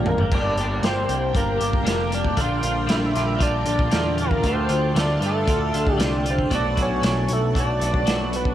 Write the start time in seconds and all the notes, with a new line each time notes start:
Already playing: A#1 A#2 A#3 D4 F4 G4 A#5
0.06 A#4 F5, floor tom
0.18 G1 G2 G3, floor tom
0.31 G1 G3 A#3 D4 G4 A#4 D5 G5 A5, kick, crash
0.56 G1 A#3 D4 G4, closed hi-hat
0.82 G1 G3 A#3 D4 G4 C5 G5, snare, closed hi-hat
1.08 C2 A#3 D4 G4, closed hi-hat
1.33 G1 G3 A#3 D4 G4 A#4 F5, kick, closed hi-hat
1.57 G1 A#3 D4 G4, closed hi-hat
1.73 kick
1.83 F1 G3 A#3 D4 G4, closed hi-hat
1.88 snare
2.09 A#3 D4 G4, closed hi-hat
2.14 D5 A5
2.25 kick
2.36 A#1 A#2 D3 G3 D4 F4, kick, closed hi-hat
2.41 F5 C6
2.62 A#1 G3 D4 F4, closed hi-hat
2.87 A#1 A#2 D3 G3 D4 F4 E5 B5, snare, closed hi-hat
2.96 F5 C6
3.06 E5 B5
3.13 A#1 G3 D4 F4, snare, closed hi-hat
3.37 A#1 D3 G3 D4 F4, kick, closed hi-hat
3.43 D5 A5
3.65 A#1 G3 D4 F4, closed hi-hat
3.79 kick
3.90 E2 A#2 D3 G3 D4 F4, snare, closed hi-hat
4.17 G3 D4 F4, closed hi-hat
4.21 A#4 F5
4.31 kick
4.41 D2 D3 A3 D4 F4 A4 A5, kick, closed hi-hat
4.47 C5 G5
4.66 D2 A3 D4 F4, closed hi-hat
4.94 D2 D3 A3 D4 F4, snare, closed hi-hat
5.00 D5 A5
5.20 G2 A3 D4 F4, closed hi-hat
5.26 A4 E5
5.45 D2 D3 A3 D4 F4, kick, closed hi-hat
5.72 D2 A3 D4 F4, closed hi-hat
5.87 kick
5.94 D3 A3 G4 D5
5.98 C2 D4 F4, snare, closed hi-hat
6.22 A3 D4 F4, closed hi-hat
6.30 C5 G5
6.39 kick
6.50 B1 B2 F#3 A3 D4 F#4 B4 F#5, kick, closed hi-hat
6.55 D5 A5
6.76 B1 A3 D4 F#4, kick, closed hi-hat
6.82 C#5 G#5
7.01 B1 B2 F#3 A3 D4 F#4, snare, closed hi-hat
7.28 B1 A3 D4 F#4, closed hi-hat
7.33 A4 E5
7.53 B1 F#3 A3 D4 F#4, kick, closed hi-hat
7.60 D5 A5
7.80 B1 A3 D4 F#4, closed hi-hat
7.94 kick
8.06 B1 B2 F#3 A3 D4 F#4, snare, closed hi-hat
8.32 A3 D4 F#4 B4 F#5, closed hi-hat
8.45 kick